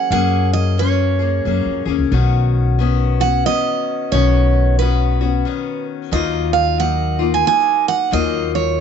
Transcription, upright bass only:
0.11 1.40 F#2 medium
1.45 1.63 F#2 medium
1.65 1.84 F2 soft
1.86 1.97 D#2 medium
1.99 2.10 C#2 medium
2.11 3.41 B1 medium
4.12 5.42 B1 medium
6.12 7.42 D#2 medium
8.12 8.80 D#2 medium

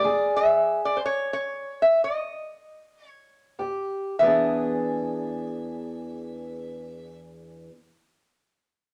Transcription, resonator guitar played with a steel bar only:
0.00 0.36 D5 loud
0.36 0.79 E5 medium
0.85 0.97 D5 medium
0.97 1.00 C5 medium
1.06 1.32 C#5 loud
1.33 1.83 C#5 medium
1.82 2.01 E5 medium
2.04 3.08 D#5 medium
3.08 3.58 C#5 medium
4.19 7.19 E5 medium

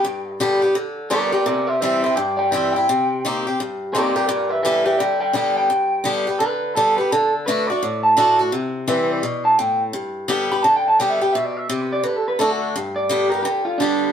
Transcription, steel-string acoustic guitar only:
0.04 0.73 G2 medium
0.40 0.61 D3 loud
0.40 0.61 G3 medium
0.40 0.62 B3 loud
0.40 0.61 G4 loud
0.62 0.76 B3 soft
0.62 0.75 G4 medium
0.75 1.09 D3 medium
1.10 1.31 D3 medium
1.10 1.32 G3 medium
1.10 1.32 B3 medium
1.10 1.31 G4 loud
1.32 1.46 B3 soft
1.32 1.45 G4 medium
1.46 2.14 C3 medium
1.82 2.03 E3 medium
1.82 2.03 G3 medium
1.82 2.04 C4 medium
1.82 2.03 E4 medium
2.04 2.18 C4 medium
2.04 2.16 E4 medium
2.17 2.85 G2 medium
2.52 2.73 E3 medium
2.52 2.74 G3 medium
2.52 2.74 C4 loud
2.52 2.74 E4 loud
2.76 2.89 C4 soft
2.76 2.88 E4 medium
2.89 3.56 C3 medium
3.25 3.45 D#3 medium
3.25 3.45 A#3 medium
3.25 3.45 C4 medium
3.25 3.46 G4 loud
3.47 3.59 C4 soft
3.47 3.59 G4 medium
3.60 4.27 G2 medium
3.95 4.15 D#3 medium
3.95 4.15 A#3 medium
3.95 4.15 C4 loud
3.95 4.15 G4 medium
4.16 4.29 C4 soft
4.16 4.28 G4 medium
4.29 4.97 G2 medium
4.65 4.86 D3 medium
4.65 4.86 G3 loud
4.65 4.86 B3 loud
4.65 4.84 G4 medium
4.86 4.99 B3 soft
4.86 4.99 G4 medium
5.00 5.32 D3 medium
5.33 5.68 D3 medium
5.33 5.69 G3 medium
5.33 5.69 B3 medium
5.33 5.69 G4 medium
5.70 6.38 G2 medium
6.04 6.26 D3 medium
6.04 6.27 G3 loud
6.04 6.27 B3 loud
6.04 6.26 G4 loud
6.27 6.41 B3 soft
6.27 6.40 G4 medium
6.40 6.75 D3 medium
6.76 6.98 D3 medium
6.76 6.98 G3 medium
6.76 6.98 B3 medium
6.76 6.97 G4 medium
6.98 7.12 B3 soft
6.98 7.11 G4 medium
7.12 7.46 D3 medium
7.48 7.68 D3 medium
7.48 7.69 A3 medium
7.48 7.69 D4 medium
7.48 7.69 F#4 loud
7.70 7.83 D4 soft
7.70 7.82 F#4 medium
7.83 8.50 A2 medium
8.17 8.38 D3 medium
8.17 8.39 A3 loud
8.17 8.39 D4 medium
8.17 8.38 F#4 loud
8.39 8.53 D4 medium
8.39 8.52 F#4 medium
8.52 9.20 C3 medium
8.88 9.22 E3 loud
8.88 9.22 G3 medium
8.88 9.22 C4 medium
8.88 9.22 E4 medium
9.23 9.57 B2 medium
9.59 9.93 A2 medium
9.93 10.61 G2 medium
10.28 10.50 D3 medium
10.28 10.50 G3 loud
10.28 10.50 B3 medium
10.28 10.50 G4 loud
10.52 10.65 B3 soft
10.52 10.64 G4 medium
10.64 10.98 D3 medium
11.00 11.21 D3 medium
11.00 11.21 G3 medium
11.00 11.21 B3 loud
11.00 11.20 G4 medium
11.21 11.35 B3 soft
11.21 11.34 G4 medium
11.35 11.69 B2 medium
11.69 12.04 C3 medium
12.04 12.38 D3 medium
12.39 12.73 D3 medium
12.39 12.74 A3 medium
12.39 12.74 D4 loud
12.39 12.75 F#4 loud
12.76 13.43 G2 medium
13.09 13.31 D3 medium
13.09 13.31 G3 medium
13.09 13.32 B3 loud
13.09 13.30 G4 loud
13.32 13.46 B3 soft
13.32 13.45 G4 medium
13.45 13.79 D3 medium
13.80 14.12 D3 medium
13.80 14.12 G3 medium
13.80 14.12 B3 medium
13.80 14.12 G4 medium

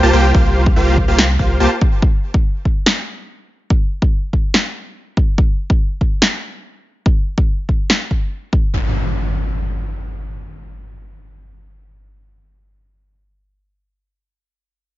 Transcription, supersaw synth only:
0.03 0.11 A#3 medium
0.03 0.11 F4 medium
0.03 0.11 G4 medium
0.03 0.11 C5 medium
0.03 0.11 A5 medium
0.13 0.32 A#3 medium
0.13 0.32 F4 medium
0.13 0.32 G4 medium
0.13 0.32 C5 medium
0.13 0.32 G5 medium
0.34 0.74 A#3 medium
0.34 0.74 F4 medium
0.34 0.74 G4 medium
0.34 0.74 C5 medium
0.34 0.74 F5 medium
0.76 1.06 A#3 medium
0.76 1.06 F4 medium
0.76 1.06 G4 medium
0.76 1.06 C5 medium
0.76 1.06 F5 medium
1.08 1.22 A#3 medium
1.08 1.22 F4 medium
1.08 1.22 G4 medium
1.08 1.22 C5 medium
1.08 1.22 F5 medium
1.39 1.58 A#3 medium
1.39 1.58 F4 medium
1.39 1.58 G4 medium
1.39 1.58 C5 medium
1.39 1.58 F5 medium
1.60 1.69 A#3 medium
1.60 1.69 F4 medium
1.60 1.69 G4 medium
1.60 1.69 C5 medium
1.60 1.69 A5 medium

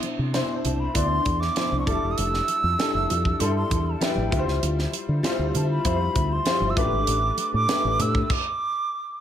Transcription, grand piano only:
0.00 0.10 B2 medium
0.00 0.10 D4 medium
0.00 0.10 E4 medium
0.00 0.11 C5 medium
0.33 0.71 B2 medium
0.33 0.72 D4 medium
0.33 0.72 E4 medium
0.33 0.72 C5 loud
0.94 1.33 B3 medium
0.94 1.33 D4 medium
0.94 1.33 E4 medium
0.94 1.33 D5 medium
1.56 1.87 B2 medium
1.56 1.85 D4 medium
1.56 1.86 E4 medium
1.56 1.87 C5 medium
1.86 2.60 G3 medium
1.86 2.60 D4 medium
1.86 2.61 E4 medium
1.86 2.61 A4 medium
2.79 3.17 G3 medium
2.79 3.17 D4 medium
2.79 3.17 E4 medium
2.79 3.17 A4 medium
3.39 3.78 G3 medium
3.39 3.78 D4 medium
3.39 3.78 E4 medium
3.39 3.78 A4 medium
4.01 4.29 G3 medium
4.01 4.32 D4 medium
4.01 4.30 E4 medium
4.01 4.31 B4 medium
4.31 5.05 G3 medium
4.31 5.05 E4 medium
4.31 5.06 F4 medium
4.31 4.39 B4 medium
4.39 5.09 C5 medium
5.23 5.61 G3 loud
5.23 5.62 E4 medium
5.23 5.62 F4 medium
5.23 5.62 C5 loud
5.84 6.23 G3 medium
5.84 6.23 E4 medium
5.84 6.23 F4 medium
5.84 6.23 C5 medium
6.46 6.77 G3 medium
6.46 6.77 E4 medium
6.46 6.77 F4 medium
6.46 6.77 C5 medium
6.76 7.50 A3 medium
6.76 7.50 D4 medium
6.76 7.51 G4 medium
6.76 7.51 B4 medium
7.68 8.07 A3 medium
7.68 8.07 D4 medium
7.68 8.07 G4 medium
7.68 8.07 B4 medium

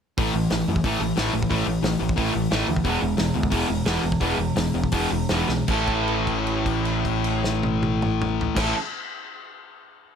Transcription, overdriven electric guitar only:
0.18 0.33 A2 medium
0.18 0.33 E3 loud
0.18 0.33 A3 medium
0.34 0.49 A2 medium
0.34 0.49 E3 medium
0.51 0.66 A2 medium
0.51 0.66 E3 medium
0.68 0.82 A2 medium
0.68 0.83 E3 medium
0.84 1.00 A2 medium
0.84 1.00 E3 loud
0.84 1.00 A3 medium
1.02 1.16 A2 medium
1.02 1.16 E3 medium
1.18 1.33 A2 medium
1.18 1.33 E3 medium
1.18 1.34 A3 loud
1.34 1.48 A2 medium
1.34 1.49 E3 medium
1.49 1.65 A2 medium
1.49 1.66 E3 medium
1.49 1.66 A3 medium
1.67 1.82 A2 medium
1.67 1.82 E3 medium
1.83 1.99 A2 medium
1.83 1.99 E3 medium
2.00 2.15 A2 medium
2.00 2.16 E3 medium
2.17 2.33 A2 medium
2.17 2.33 E3 loud
2.17 2.33 A3 loud
2.34 2.49 A2 medium
2.34 2.49 E3 medium
2.51 2.66 A2 medium
2.51 2.67 E3 medium
2.51 2.67 A3 medium
2.69 2.83 A2 medium
2.69 2.83 E3 medium
2.85 3.00 E3 medium
2.85 3.01 G#3 medium
2.85 3.01 B3 loud
3.02 3.16 E3 medium
3.02 3.16 G#3 medium
3.19 3.33 E3 medium
3.19 3.33 G#3 medium
3.36 3.50 E3 medium
3.36 3.51 G#3 medium
3.51 3.67 E3 loud
3.51 3.67 G#3 loud
3.51 3.68 B3 medium
3.70 3.84 E3 medium
3.70 3.84 G#3 medium
3.86 4.02 E3 medium
3.86 4.02 G#3 medium
3.86 4.02 B3 medium
4.04 4.19 E3 medium
4.04 4.19 G#3 medium
4.21 4.37 E3 medium
4.21 4.37 G#3 medium
4.21 4.38 B3 medium
4.39 4.54 E3 medium
4.39 4.55 G#3 medium
4.56 4.72 E3 medium
4.56 4.72 G#3 medium
4.74 4.90 E3 medium
4.74 4.91 G#3 medium
4.92 5.10 E3 medium
4.92 5.10 G#3 loud
4.92 5.10 B3 medium
5.11 5.28 E3 medium
5.11 5.28 G#3 medium
5.30 5.47 E3 medium
5.30 5.48 G#3 medium
5.30 5.48 B3 medium
5.48 5.66 E3 medium
5.48 5.66 G#3 medium
5.67 8.54 A2 medium
5.67 8.56 E3 medium
5.67 8.56 A3 medium
5.67 8.57 C#4 medium
5.67 8.58 E4 medium
5.67 8.59 A4 loud
8.55 8.73 A2 medium
8.55 8.73 E3 medium
8.55 8.74 A3 loud
8.55 8.74 C#4 loud
8.55 8.74 E4 medium
8.59 8.75 A4 loud

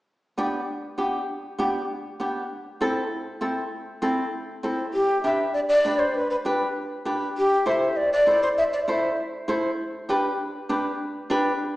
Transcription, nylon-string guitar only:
0.38 0.59 B3 medium
0.38 0.59 D4 medium
0.38 0.60 G4 medium
0.98 1.20 B3 medium
0.98 1.20 D4 medium
0.98 1.20 G4 medium
1.58 1.80 B3 medium
1.58 1.81 D4 medium
1.58 1.81 G4 medium
2.20 2.41 B3 medium
2.20 2.42 D4 medium
2.20 2.42 G4 medium
2.81 3.02 C4 medium
2.81 3.02 E4 medium
2.81 3.03 A4 medium
3.41 3.63 C4 medium
3.41 3.63 E4 medium
3.41 3.63 A4 medium
4.02 4.24 C4 medium
4.02 4.24 E4 medium
4.02 4.24 A4 medium
4.63 4.85 C4 medium
4.63 4.85 E4 medium
4.63 4.85 A4 medium
5.24 5.45 D4 medium
5.24 5.45 G4 medium
5.24 5.46 B4 medium
5.85 6.06 D4 medium
5.85 6.06 G4 medium
5.85 6.06 B4 medium
6.45 6.66 D4 medium
6.45 6.67 G4 medium
6.45 6.67 B4 medium
7.05 7.27 D4 medium
7.05 7.27 G4 medium
7.05 7.27 B4 medium
7.66 7.87 E4 medium
7.66 7.88 A4 medium
7.66 7.88 C5 medium
8.27 8.48 E4 medium
8.27 8.48 A4 medium
8.27 8.49 C5 medium
8.88 9.09 E4 medium
8.88 9.09 A4 medium
8.88 9.10 C5 medium
9.48 9.69 E4 medium
9.48 9.70 A4 medium
9.48 9.70 C5 medium
10.09 10.30 D4 medium
10.09 10.30 G4 medium
10.09 10.31 B4 medium
10.69 10.91 D4 medium
10.69 10.91 G4 medium
10.69 10.91 B4 medium
11.30 11.51 D4 medium
11.30 11.51 G4 medium
11.30 11.52 B4 medium

